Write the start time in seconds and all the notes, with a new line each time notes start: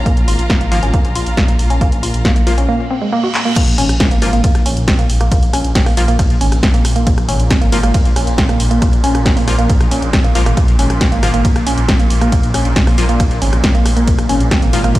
Already playing: A#2 A#3 F4 F5 A#5
0.06 A#3, kick, closed hi-hat
0.17 A#1, closed hi-hat
0.28 G#1 F4, open hi-hat
0.39 A#1, closed hi-hat
0.50 A#3, kick, snare, closed hi-hat
0.61 G#1 A#3, closed hi-hat
0.72 G#1 F3 A#3 F4, open hi-hat
0.83 G#1 C#4, closed hi-hat
0.94 A#3, kick, closed hi-hat
1.05 A#1, closed hi-hat
1.15 A#1 F4, open hi-hat
1.26 A#1, closed hi-hat
1.37 A#3, kick, snare, closed hi-hat
1.48 A#1 A#3, closed hi-hat
1.59 A#1, open hi-hat
1.70 A#1 C#4, closed hi-hat
1.81 A#3, kick, closed hi-hat
1.92 A#1, closed hi-hat
2.03 A#1 F4, open hi-hat
2.14 A#1, closed hi-hat
2.25 A#3, kick, snare, closed hi-hat
2.36 A#1 A#3, closed hi-hat
2.47 A#1 F3 A#3 F4, open hi-hat
2.58 A#1 C#4, closed hi-hat
2.69 A#3, reverse cymbal
2.91 C4
3.02 G#3
3.13 A#3
3.24 F#4
3.34 clap
3.45 A#3
3.56 A#2 A#3, kick, cross-stick, closed hi-hat, crash, ride
3.67 A#1, closed hi-hat
3.78 G#1 C#4, open hi-hat
3.89 A#1, cross-stick, closed hi-hat
4.00 C4, kick, snare, closed hi-hat, ride
4.11 G#1 A#3, closed hi-hat
4.22 G#1 F3 A#3 F4, cross-stick, open hi-hat
4.33 G#1 A#3, closed hi-hat
4.44 A#3, kick, closed hi-hat, ride
4.55 A#1, cross-stick, closed hi-hat
4.66 A#1 C#4, open hi-hat
4.77 A#1, closed hi-hat
4.88 C4, kick, cross-stick, snare, closed hi-hat, ride
4.99 A#1 A#3, closed hi-hat
5.10 A#1, open hi-hat
5.21 A#1 A#3, cross-stick, closed hi-hat
5.31 A#3, kick, closed hi-hat, ride
5.43 A#1, closed hi-hat
5.53 A#1 C#4, cross-stick, open hi-hat
5.64 A#1, closed hi-hat
5.75 C4, kick, snare, closed hi-hat, ride
5.86 A#1 A#3, cross-stick, open hi-hat
5.97 A#1 F3 A#3 F4, open hi-hat
6.08 A#1 A#3, closed hi-hat
6.19 A#3, kick, cross-stick, closed hi-hat, ride
6.30 A#1, closed hi-hat
6.41 G#1 C#4, open hi-hat
6.52 A#1, cross-stick, closed hi-hat
6.63 C4, kick, snare, closed hi-hat, ride
6.74 A#1 A#3, closed hi-hat
6.85 A#1, cross-stick, open hi-hat
6.96 A#1 A#3, closed hi-hat
7.07 A#3, kick, closed hi-hat, ride
7.18 A#1, cross-stick, closed hi-hat
7.29 G#1 C#4, open hi-hat
7.40 A#1, closed hi-hat
7.50 C4, kick, cross-stick, snare, closed hi-hat, ride
7.61 G#1 A#3, closed hi-hat
7.72 G#1 F3 A#3 F4, open hi-hat
7.83 G#1 A#3, cross-stick, closed hi-hat
7.94 A#3, kick, closed hi-hat, ride
8.05 A#1, closed hi-hat
8.16 A#1 C#4, cross-stick, open hi-hat
8.27 A#1, closed hi-hat
8.38 C4, kick, snare, closed hi-hat, ride
8.49 A#1 A#3, cross-stick, closed hi-hat
8.60 A#1, open hi-hat
8.71 A#1 A#3, closed hi-hat
8.82 A#3, kick, cross-stick, closed hi-hat, ride
8.93 A#1, closed hi-hat
9.04 A#1 C#4, open hi-hat
9.15 A#1, cross-stick, closed hi-hat
9.26 C4, kick, snare, closed hi-hat, ride
9.37 A#1 A#3, open hi-hat
9.48 A#1 F3 A#3 F4, cross-stick, open hi-hat
9.59 A#1 A#3, closed hi-hat
9.69 A#3, kick, closed hi-hat, ride
9.80 A#1, cross-stick, closed hi-hat
9.91 A#1 C#4, open hi-hat
10.02 A#1, closed hi-hat
10.13 C4, kick, cross-stick, snare, closed hi-hat, ride
10.24 A#1 A#3, closed hi-hat
10.35 A#1 F3 A#3 F4, open hi-hat
10.46 G#1 A#3, cross-stick, closed hi-hat
10.57 A#3, kick, cross-stick, closed hi-hat, ride
10.68 A#1, closed hi-hat
10.79 G#1 C#4, open hi-hat
10.90 A#1, cross-stick, closed hi-hat
11.01 C4, kick, snare, closed hi-hat, ride
11.12 G#1 A#3, closed hi-hat
11.23 G#1 F3 A#3 F4, cross-stick, open hi-hat
11.34 G#1 A#3, closed hi-hat
11.45 A#3, kick, closed hi-hat, ride
11.56 A#1, cross-stick, closed hi-hat
11.67 A#1 C#4, open hi-hat
11.78 A#1, closed hi-hat
11.88 C4, kick, cross-stick, snare, closed hi-hat, ride
12.00 A#1 A#3, closed hi-hat
12.10 A#1, open hi-hat
12.21 A#1 A#3, cross-stick, closed hi-hat
12.32 A#3, kick, closed hi-hat, ride
12.43 A#1, closed hi-hat
12.54 A#1 C#4, cross-stick, open hi-hat
12.65 A#1, closed hi-hat
12.76 C4, kick, snare, closed hi-hat, ride
12.87 A#1 A#3, cross-stick, open hi-hat
12.98 A#1 F3 A#3 F4, open hi-hat
13.09 A#1 A#3, closed hi-hat
13.20 A#3, kick, cross-stick, closed hi-hat, ride
13.31 A#1, closed hi-hat
13.42 G#1 C#4, open hi-hat
13.53 A#1, cross-stick, closed hi-hat
13.64 C4, kick, snare, closed hi-hat, ride
13.75 A#1 A#3, closed hi-hat
13.86 A#1, cross-stick, open hi-hat
13.97 A#1 A#3, closed hi-hat
14.07 A#3, kick, closed hi-hat, ride
14.18 A#1, cross-stick, closed hi-hat
14.29 G#1 C#4, open hi-hat
14.40 A#1, closed hi-hat
14.51 C4, kick, cross-stick, snare, closed hi-hat, ride
14.62 G#1 A#3, closed hi-hat
14.73 G#1 F3 A#3 F4, open hi-hat
14.84 G#1 A#3, cross-stick, closed hi-hat
14.95 A#3, kick, closed hi-hat, ride